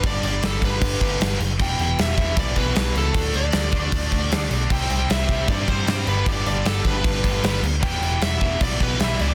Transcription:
<<
  \new Staff \with { instrumentName = "Lead electric guitar" } { \time 4/4 \key e \minor \tempo 4 = 154 d''8 d''8 a'8 b'2 r8 | g''8 g''8 e''4 d''8 b'4 a'8~ | a'8 d''2. r8 | g''8 g''8 e''4 d''8 c''4 b'8 |
d''8 d''8 a'8 b'2 r8 | g''4 e''4 d''8 b'8 e''8 d''8 | }
  \new Staff \with { instrumentName = "Distorted electric guitar" } { \clef bass \time 4/4 \key e \minor r1 | r1 | r1 | <c g c' e'>2.~ <c g c' e'>8 <g, d g b d'>8~ |
<g, d g b d'>2. <g, d g b d'>8 r8 | <e g b e'>2.~ <e g b e'>8 <e g b e'>8 | }
  \new Staff \with { instrumentName = "Distorted electric guitar" } { \clef bass \time 4/4 \key e \minor <g, d g>4 <g, d g>4. <g, d g>4 r8 | <e, b, e>4. <e, b, e>4. <e, b, e>4 | <d a d'>4. <d a d'>4. <d a d'>4 | <c g c'>4. <c g c'>4. <c g c'>8 <g, d g>8~ |
<g, d g>4 <g, d g>4. <g, d g>4 r8 | <e, b, e>4. <e, b, e>4. <e, b, e>4 | }
  \new Staff \with { instrumentName = "Picked electric bass" } { \clef bass \time 4/4 \key e \minor g,,8 g,,8 g,,8 g,,8 g,,8 g,,8 g,,8 fis,,8 | e,,8 e,,8 e,,8 e,,8 b,,8 b,,8 b,,8 cis,8 | d,8 d,8 d,8 d,8 d,8 d,8 d,8 b,,8 | c,8 c,8 c,8 c,8 g,8 g,8 g,8 g,,8 |
g,,8 g,,8 g,,8 g,,8 g,,8 g,,8 g,,8 d,8 | e,,8 e,,8 e,,8 e,,8 b,,8 b,,8 b,,8 cis,8 | }
  \new DrumStaff \with { instrumentName = "Drums" } \drummode { \time 4/4 <cymc bd>8 cymc8 <cymc sn>8 <cymc bd>8 <cymc bd>8 <cymc bd>8 <cymc sn>8 cymc8 | <cymc bd>8 cymc8 <cymc sn>8 <cymc bd>8 <cymc bd>8 <cymc bd>8 <cymc sn>8 cymc8 | <cymc bd>8 cymc8 <cymc sn>8 <cymc bd>8 <cymc bd>8 <cymc bd>8 <cymc sn>8 cymc8 | <cymc bd>8 cymc8 <cymc sn>8 <cymc bd>8 <cymc bd>8 <cymc bd>8 <cymc sn>8 cymc8 |
<cymc bd>8 cymc8 <cymc sn>8 <cymc bd>8 <cymc bd>8 <cymc bd>8 <cymc sn>8 cymc8 | <cymc bd>8 cymc8 <cymc sn>8 <cymc bd>8 <cymc bd>8 <cymc bd>8 <cymc sn>8 cymc8 | }
>>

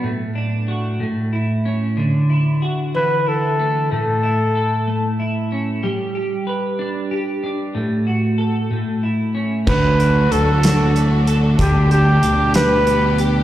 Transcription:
<<
  \new Staff \with { instrumentName = "Flugelhorn" } { \time 6/8 \key d \major \tempo 4. = 62 r2. | r4. b'8 a'4 | a'2 r4 | r2. |
r2. | b'4 a'4. r8 | g'8 g'4 b'4 r8 | }
  \new Staff \with { instrumentName = "Clean electric guitar" } { \time 6/8 \key d \major a,8 d'8 fis'8 a,8 e'8 cis'8 | d8 e'8 fis'8 e8 e'8 a8 | a,8 e'8 a'8 a8 e'8 cis'8 | g8 g'8 b'8 d'8 g'8 d'8 |
a,8 fis'8 a'8 a,8 e'8 cis'8 | d8 d'8 a'8 d'8 a8 a'8 | d8 d'8 g'8 d'8 b8 g'8 | }
  \new Staff \with { instrumentName = "String section" } { \clef bass \time 6/8 \key d \major << { r2. | r2. | r2. | r2. |
r2. | <a, fis fis'>2. | <b, g g'>2. | } \\ { r2. | r2. | r2. | r2. |
r2. | <d d'>2.~ | <d d'>2. | } >> }
  \new Staff \with { instrumentName = "Fingered electric bass" } { \clef bass \time 6/8 \key d \major r2. | r2. | r2. | r2. |
r2. | d,4 d,2 | d,4 d,2 | }
  \new DrumStaff \with { instrumentName = "Drums" } \drummode { \time 6/8 r4. r4. | r4. r4. | r4. r4. | r4. r4. |
r4. r4. | <cymc bd>8 hh8 hh8 <hh sn>8 hh8 hh8 | <hh bd>8 hh8 hh8 <hh sn>8 hh8 hh8 | }
>>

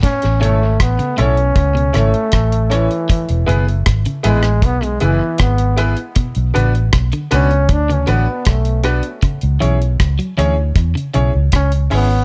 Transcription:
<<
  \new Staff \with { instrumentName = "Upright piano" } { \time 4/4 \key a \major \tempo 4 = 78 r8 <cis' e' a' cis''>16 r8. <cis' e' a' cis''>16 r8 <a' cis''>16 <cis' e' a' cis''>16 r8. <cis' e' a' cis''>16 r16 | r8 <b e' gis' b'>16 r8. <b e' gis' b'>16 r8. <b e' gis' b'>16 r8. <b e' gis' b'>16 r16 | r8 <b d' fis' b'>16 r8. <b d' fis' b'>16 r8 <fis' b'>16 <b d' fis' b'>16 r8. <b d' fis' b'>16 r16 | r8 <cis' e' gis' cis''>16 r8. <cis' e' gis' cis''>16 r8. <cis' e' gis' cis''>16 r8. <cis' e' gis' cis''>16 r16 | }
  \new Staff \with { instrumentName = "Trombone" } { \time 4/4 \key a \major cis'8 a8 b8 cis'4 a4 e8~ | e8 r4 gis8 b16 gis16 e8 b8 r8 | r4. cis'8 d'16 cis'16 b8 a8 r8 | r2. cis'8 b8 | }
  \new Staff \with { instrumentName = "Clean electric guitar" } { \clef bass \time 4/4 \key a \major a,16 r16 b,16 r8 cis16 a,16 r8 b,16 cis16 r4 r16 | e16 r16 b,16 r8 cis16 gis,16 r8 b,16 cis16 r4 r16 | b,16 r16 cis16 r8 d16 b,16 r8 cis16 d16 r4 r16 | cis16 r16 e16 r8 fis16 e16 r8 cis16 cis16 r4 r16 | }
  \new Staff \with { instrumentName = "Fingered electric bass" } { \clef bass \time 4/4 \key a \major r16 a,,16 gis,,8 a,,16 r16 b,,8 cis,8 gis,,16 r16 a,,8. r16 | r16 e,,16 fis,,8 gis,,16 r16 a,,8 b,,8 fis,,16 r16 gis,,8. r16 | r16 b,,16 a,,8 b,,16 r16 cis,8 d,8 a,,16 r16 b,,8. r16 | r16 cis,16 b,,8 cis,16 r16 d,8 e,16 r16 b,,16 cis,16 cis,8 gis,,8 | }
  \new DrumStaff \with { instrumentName = "Drums" } \drummode { \time 4/4 <hh bd>16 hh16 hh8 <hh bd ss>16 hh16 hh16 hh16 <hh bd>16 hh16 <hh ss>16 hh16 <hh bd ss>16 hh16 hh16 hh16 | <hh bd>16 hh16 hh16 hh16 <hh bd ss>16 hh16 hh16 <hh ss>16 <hh bd>16 hh16 hh8 <hh bd ss>16 hh16 hh16 hh16 | <hh bd>16 hh16 hh16 hh16 <hh bd ss>16 hh16 hh16 hh16 <hh bd>16 hh16 hh8 <hh bd ss>16 hh16 hh16 hh16 | <hh bd>16 hh16 hh16 hh16 <hh bd ss>16 hh16 hh8 <hh bd>16 hh16 hh8 <hh bd ss>16 hh16 hho8 | }
>>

